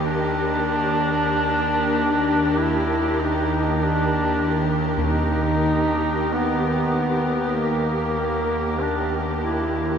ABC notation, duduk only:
X:1
M:4/4
L:1/8
Q:1/4=48
K:none
V:1 name="Duduk"
D4 _F _E D2 | _E2 _C2 _B,2 D _F |]